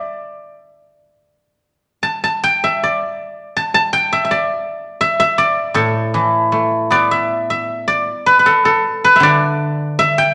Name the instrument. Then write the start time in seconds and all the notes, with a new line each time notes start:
guzheng
Already playing: D5 E5 G5 A5
2.03 A5
2.24 A5
2.44 G5
2.64 E5
2.83 D5
3.56 A5
3.74 A5
3.93 G5
4.13 E5
4.25 E5
4.31 D5
5.01 E5
5.20 E5
5.38 D5
5.74 A2 A4
6.14 E3
6.52 A3
6.90 B3 D5
7.11 E5
7.50 E5
7.88 D5
8.26 B4
8.39 B4
8.46 A4
8.65 A4
9.04 B4
9.16 E5
9.20 D3 D5
9.99 E5
10.18 G5